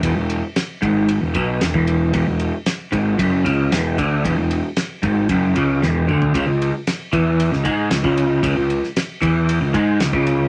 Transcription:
<<
  \new Staff \with { instrumentName = "Clean electric guitar" } { \clef bass \time 4/4 \key e \mixolydian \tempo 4 = 114 e,16 e,8 r8. gis,8. e,16 b,8 e,16 e,8. | e,16 e,8 r8. gis,8 fis,8 cis8 e,8 d8 | e,16 e,8 r8. gis,8 fis,8 cis8 e,8 d8 | cis16 cis8 r8. e8. cis16 gis8 cis16 cis8. |
cis16 cis8 r8. e8. cis16 gis8 cis16 cis8. | }
  \new Staff \with { instrumentName = "Picked electric bass" } { \clef bass \time 4/4 \key e \mixolydian e,,16 e,,8 r8. gis,,8. e,,16 b,,8 e,,16 e,,8. | e,,16 e,,8 r8. gis,,8 fis,,8 cis,8 e,,8 d,8 | e,,16 e,,8 r8. gis,,8 fis,,8 cis,8 e,,8 d,8 | cis,16 cis,8 r8. e,8. cis,16 gis,8 cis,16 cis,8. |
cis,16 cis,8 r8. e,8. cis,16 gis,8 cis,16 cis,8. | }
  \new DrumStaff \with { instrumentName = "Drums" } \drummode { \time 4/4 <bd cymr>8 cymr8 <cymr sn>8 <bd cymr>8 cymr8 <bd cymr>8 <cymr sn>16 bd16 cymr8 | <bd cymr>8 cymr8 <cymr sn>8 <bd cymr>8 <bd cymr>8 cymr8 <cymr sn>8 <bd cymr>8 | <bd cymr>8 cymr8 <cymr sn>8 <bd cymr>8 <bd cymr>8 cymr8 sn8 toml16 tomfh16 | <bd cymr>8 cymr8 <cymr sn>8 <bd cymr>8 cymr16 sn16 <bd cymr>8 <cymr sn>16 bd16 cymr8 |
<bd cymr>8 cymr16 sn16 <cymr sn>8 <bd cymr>8 cymr8 <bd cymr>8 <cymr sn>16 bd16 cymr8 | }
>>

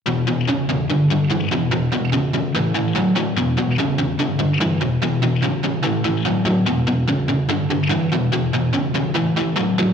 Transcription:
\new Staff \with { instrumentName = "Overdriven electric guitar" } { \clef bass \time 4/4 \key e \phrygian \tempo 4 = 145 <e, b,>8 <e, b,>8 <e, cis>8 <e, cis>8 <g, d>8 <g, d>8 <g, e>8 <e, b,>8 | <e, b,>8 <e, b,>8 <e, cis>8 <e, cis>8 <a, e>8 <a, e>8 <a, fis>8 <a, fis>8 | <e, b,>8 <e, b,>8 <e, cis>8 <e, cis>8 <g, d>8 <g, d>8 <g, e>8 <e, b,>8 | <e, b,>8 <e, b,>8 <e, cis>8 <e, cis>8 <a, e>8 <a, e>8 <a, fis>8 <a, fis>8 |
<e, b,>8 <e, b,>8 <e, cis>8 <e, cis>8 <g, d>8 <g, d>8 <g, e>8 <e, b,>8 | <e, b,>8 <e, b,>8 <e, cis>8 <e, cis>8 <a, e>8 <a, e>8 <a, fis>8 <a, fis>8 | }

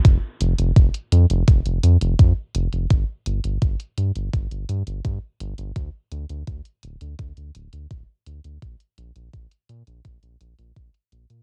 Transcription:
<<
  \new Staff \with { instrumentName = "Analog synth bass" } { \clef bass \time 4/4 \key g \dorian \tempo 4 = 84 f,,16 r16 f,,16 f,,16 f,,16 r16 f,16 f,,16 f,,16 f,,16 f,16 f,,16 f,16 r16 f,,16 f,,16 | g,,16 r16 g,,16 g,,16 g,,16 r16 g,16 g,,16 g,,16 g,,16 g,16 g,,16 g,16 r16 g,,16 g,,16 | d,16 r16 d,16 d,16 d,16 r16 d,,16 d,16 d,16 d,16 d,,16 d,16 d,,16 r16 d,16 d,16 | bes,,16 r16 bes,,16 bes,,16 bes,,16 r16 bes,16 bes,,16 bes,,16 bes,,16 bes,,16 bes,,16 bes,,16 r16 bes,,16 bes,16 | }
  \new DrumStaff \with { instrumentName = "Drums" } \drummode { \time 4/4 <hh bd>8 hh16 hh16 <hh bd>16 hh16 hh16 hh16 <hh bd>16 hh16 hh16 hh16 <hh bd>8 hh16 hh16 | <hh bd>8 hh16 hh16 <hh bd>16 hh16 hh16 hh16 <hh bd>16 hh16 hh16 hh16 <hh bd>8 hh16 hh16 | <hh bd>8 hh16 hh16 <hh bd>16 hh16 hh16 hh16 <hh bd>16 hh16 hh16 hh16 <hh bd>8 hh16 hh16 | <hh bd>16 hh16 hh16 hh16 <hh bd>16 hh16 hh16 hh16 <hh bd>16 hh16 hh16 hh16 <hh bd>16 hh16 hh16 hh16 | }
>>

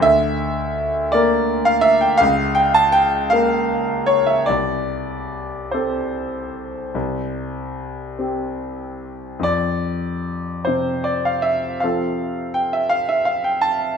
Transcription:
<<
  \new Staff \with { instrumentName = "Grand piano" } { \time 12/8 \key f \major \tempo 4. = 52 e''4. d''8. f''16 e''16 g''16 f''8 g''16 a''16 g''8 f''4 des''16 e''16 | d''4. c''2. r4. | d''4. c''8 d''16 f''16 e''8 f''4 g''16 e''16 f''16 e''16 f''16 g''16 a''8 | }
  \new Staff \with { instrumentName = "Grand piano" } { \time 12/8 \key f \major d,4. <bes bes'>4. des,4. <bes bes'>4. | c,4. <c' a'>4. c,4. <c' g'>4. | f,4. c4. <f c' a'>2. | }
>>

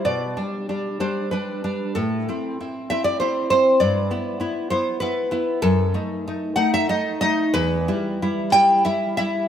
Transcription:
\new Staff \with { instrumentName = "Nylon-string guitar" } { \time 3/4 \key e \minor \tempo 4 = 95 << { d''4. c''8 b'4 | a'4. e''16 d''16 c''8 c''8 | d''4. c''8 b'4 | a'4. fis''16 e''16 dis''8 dis''8 |
b'4. g''8 e''8 e''8 | } \\ { b,8 <g d'>8 <g d'>8 <g d'>8 <g d'>8 <g d'>8 | a,8 <c' e'>8 <c' e'>8 <c' e'>8 <c' e'>8 <c' e'>8 | g,8 <b e'>8 <b e'>8 <b e'>8 <b e'>8 <b e'>8 | fis,8 <a dis'>8 <a dis'>8 <a dis'>8 <a dis'>8 <a dis'>8 |
e,8 <g e'>8 <g e'>8 <g e'>8 <g e'>8 <g e'>8 | } >> }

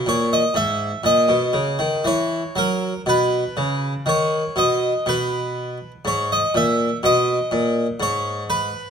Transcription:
<<
  \new Staff \with { instrumentName = "Harpsichord" } { \time 3/4 \key b \major \tempo 4 = 61 cis''16 dis''16 e''8 dis''4 cis''8 ais'8 | b'4 cis''8 dis''8 b'4 | cis''16 dis''16 e''8 dis''4 cis''8 b'8 | }
  \new Staff \with { instrumentName = "Harpsichord" } { \clef bass \time 3/4 \key b \major ais,8 gis,8 ais,16 b,16 cis16 dis16 e8 fis8 | b,8 cis8 dis8 b,8 b,4 | gis,8 ais,8 b,8 ais,8 gis,4 | }
>>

